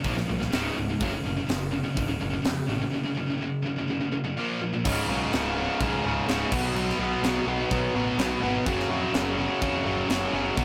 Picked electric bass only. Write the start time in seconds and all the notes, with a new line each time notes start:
0.04 A#1
0.29 C2
0.53 C#1
0.77 C#1
1.01 F#1
1.26 F#1
1.49 F#1
1.97 C#1
2.21 F#1
2.45 F2
2.68 A1
4.85 C#1
5.09 B1
5.33 C#1
5.80 B1
6.03 C#1
6.27 C#1
6.52 B1
6.74 B1
6.98 B1
7.22 B1
7.46 B1
7.71 B1
7.94 A1
8.18 B1
8.42 G#1
8.66 F#1
8.89 F2
9.13 F#1
9.62 F2
9.85 F#1
10.09 F#1
10.33 F#1
10.57 B1